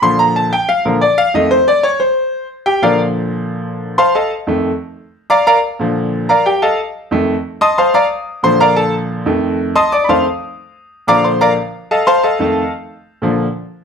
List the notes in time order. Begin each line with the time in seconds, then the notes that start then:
0.02 A#2 D3 F3 C6
0.19 A#5
0.36 A5
0.53 G5
0.69 F5
0.85 A#2 D3 F3 A#4
1.01 D5
1.18 F5
1.34 F2 D#3 A3 D#5
1.51 C5
1.68 D5
1.83 C#5
2.00 C5
2.66 G4 G5
2.82 A#2 D3 F3 F4 A#4 D5 F5
3.98 C5 F5 A5 C6
4.15 A4 D#5 F5 A5
4.47 F2 D#3 A3
5.30 D5 F5 A#5 D6
5.47 A#4 D5 F5 A#5
5.79 A#2 D3 F3
6.29 A#4 D5 F5 A#5
6.46 G4 G5
6.62 A4 D#5 F5 A5
7.11 F2 D#3 A3
7.61 D#5 A5 C6 D#6
7.78 C5 F5 A5 C6
7.94 D5 F5 A#5 D6
8.43 A#2 D3 F3 C5 C6
8.60 A#4 D5 F5 A#5
8.76 A4 A5
9.26 F2 D#3 A3
9.76 D#5 A5 C6 D#6
9.92 D5 D6
10.04 B5
10.09 F2 D#3 A3 C5 F5 A5 C6
11.07 A#2 D3 F3 D5 F5 A#5 D6
11.24 C5 C6
11.41 A#4 D5 F5 A#5
11.91 A4 D#5 F5 A5
12.07 C5 F5 A5 C6
12.23 A4 D#5 F5 A5
12.39 F2 D#3 A3
13.22 A#2 D3 F3